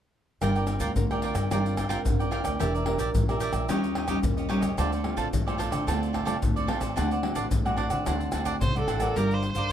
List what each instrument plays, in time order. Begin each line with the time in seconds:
0.41 upright bass G1, nylon-string guitar G3 C4 F4 A#4, cavaquinho F4 A#4 D5 G5, pandeiro, tamborim, shaker, surdo
0.56 cavaquinho A#4 D5 G5, pandeiro, shaker
0.67 nylon-string guitar C4 F4 A#4, pandeiro, tamborim, shaker
0.80 upright bass D2, cavaquinho F4 A#4 D5 G5, pandeiro, shaker, surdo
0.95 upright bass D2, nylon-string guitar D3 C4 F4 A#4, pandeiro, shaker, surdo
1.10 nylon-string guitar C4 F4 A#4, cavaquinho A#4 D5 G5, pandeiro, tamborim, shaker
1.22 cavaquinho F4 A#4 D5 G5, pandeiro, surdo
1.35 upright bass G2, cavaquinho A#4 D5 G5, pandeiro, tamborim, shaker
1.50 upright bass G1, nylon-string guitar G3 C4 F4 A#4, cavaquinho F4 A#4 D5 G5, pandeiro, tamborim, shaker, surdo
1.66 pandeiro, shaker
1.77 cavaquinho F4 A#4 D5 G5, pandeiro, tamborim, shaker, surdo
1.89 nylon-string guitar C4 F4 A#4, cavaquinho F4 A#4 D5 G5, pandeiro, tamborim, shaker, surdo
2.05 upright bass G1, nylon-string guitar D3, pandeiro, shaker, surdo
2.19 cavaquinho A#4 D5 G5, pandeiro, shaker
2.31 nylon-string guitar C4 F4 A#4, cavaquinho F4 A#4 D5 G5, pandeiro, tamborim
2.44 upright bass D2, cavaquinho A#4 D5 G5, pandeiro, tamborim, shaker, surdo
2.59 upright bass E1, nylon-string guitar E3 D4 G4 A#4, cavaquinho G4 A#4 D5 E5, pandeiro, tamborim, shaker, surdo
2.74 cavaquinho A#4 D5 E5, pandeiro, shaker
2.86 nylon-string guitar D4 G4 A#4, pandeiro, tamborim
2.98 upright bass A#1, cavaquinho G4 A#4 D5 E5, pandeiro, shaker, surdo
3.14 upright bass A#1, nylon-string guitar E3, pandeiro, shaker, surdo
3.28 nylon-string guitar D4 G4 A#4, cavaquinho A#4 D5 E5, pandeiro, tamborim, shaker
3.40 cavaquinho G4 A#4 D5 E5, pandeiro, shaker, surdo
3.53 upright bass A#1, cavaquinho A#4 D5 E5, pandeiro, tamborim, shaker
3.69 upright bass D#2, nylon-string guitar D#3 G3 C#4 F4, cavaquinho D#4 G4 C#5 D#5, pandeiro, tamborim, shaker, surdo
3.83 pandeiro, shaker
3.95 cavaquinho D#4 G4 C#5 D#5, pandeiro, tamborim
4.08 nylon-string guitar G3 C#4 F4, cavaquinho D#4 G4 C#5 D#5, pandeiro, tamborim, shaker, surdo
4.23 upright bass D#2, nylon-string guitar A#2, pandeiro, shaker, surdo
4.37 cavaquinho G4 C#5 D#5, pandeiro, shaker
4.49 nylon-string guitar G3 C#4 F4, cavaquinho D#4 G4 C#5 D#5, pandeiro, tamborim
4.61 upright bass D#2, cavaquinho G4 C#5 D#5, pandeiro, tamborim, shaker, surdo
4.77 upright bass D2, nylon-string guitar D3 A3 C4 F4, cavaquinho F4 A4 C5 D5, pandeiro, tamborim, shaker, surdo
4.92 cavaquinho A4 C5 D5, pandeiro, shaker
5.04 nylon-string guitar A3 C4 F4, pandeiro, tamborim
5.17 upright bass A1, cavaquinho F4 A4 C5 D5, pandeiro, shaker, surdo
5.33 upright bass A1, nylon-string guitar A2, pandeiro, shaker, surdo
5.47 nylon-string guitar A3 C4 F4, cavaquinho A4 C5 D5, pandeiro, tamborim, shaker
5.58 cavaquinho F4 A4 C5 D5, pandeiro, shaker, surdo
5.71 upright bass D3, cavaquinho A4 C5 D5, pandeiro, tamborim, shaker
5.87 upright bass D2, nylon-string guitar D3 A3 C4 F4, cavaquinho F4 A4 C5 D5, pandeiro, tamborim, shaker, surdo
6.03 pandeiro, shaker
6.13 cavaquinho F4 A4 C5 D5, pandeiro, tamborim, surdo
6.25 nylon-string guitar A3 C4 F4, cavaquinho F4 A4 C5 D5, pandeiro, tamborim, shaker, surdo
6.42 upright bass D2, nylon-string guitar A2, pandeiro, shaker, surdo
6.56 cavaquinho A4 C5 D5, pandeiro, shaker
6.67 nylon-string guitar A3 C4 F4, cavaquinho F4 A4 C5 D5, pandeiro, tamborim
6.80 upright bass A1, cavaquinho A4 C5 D5, pandeiro, tamborim, shaker, surdo
6.96 upright bass D2, nylon-string guitar D3 A3 C4 F#4, cavaquinho D4 C5 D5 F#5, pandeiro, tamborim, shaker, surdo
7.11 cavaquinho C5 D5 F#5, pandeiro, shaker
7.23 nylon-string guitar A3 C4 F#4, pandeiro, tamborim
7.35 upright bass A1, cavaquinho D4 C5 D5 F#5, pandeiro, shaker, surdo
7.51 upright bass A1, nylon-string guitar A2, pandeiro, shaker, surdo
7.65 nylon-string guitar A3 C4 F#4, cavaquinho C5 D5 F#5, pandeiro, tamborim, shaker
7.77 cavaquinho D4 C5 D5 F#5, pandeiro, surdo
7.90 upright bass D3, cavaquinho C5 D5 F#5, pandeiro, tamborim, shaker
8.05 upright bass D2, nylon-string guitar D3 A3 C4 F#4, cavaquinho D4 C5 D5 F#5, pandeiro, tamborim, shaker, surdo
8.21 pandeiro, shaker
8.31 upright bass D2, nylon-string guitar A3 C4 F#4, cavaquinho D4 C5 D5 F#5, pandeiro, tamborim, shaker
8.45 cavaquinho D4 C5 D5 F#5, pandeiro, tamborim, shaker, surdo
8.61 upright bass C2, nylon-string guitar A2, erhu C5, pandeiro, shaker, surdo
8.75 nylon-string guitar A3 C4 F#4, cavaquinho C5 D5 F#5, pandeiro, shaker
8.81 erhu A4
8.88 upright bass A1, cavaquinho D4 C5 D5 F#5, pandeiro, tamborim, shaker
8.98 nylon-string guitar D4 F4 A#4, erhu A4, cavaquinho D5 F#5, pandeiro, tamborim, shaker, surdo
9.03 cavaquinho C5
9.16 upright bass G1, nylon-string guitar G3, cavaquinho G4 A#4 D5 F5, erhu A#4, pandeiro, shaker, surdo
9.31 cavaquinho A#4 D5 F5, erhu C5, pandeiro, shaker
9.43 muted cavaquinho stroke, pandeiro
9.52 upright bass G1, nylon-string guitar D4 F4 A#4, erhu C5, pandeiro, shaker, surdo
9.56 cavaquinho A#4 D5 F5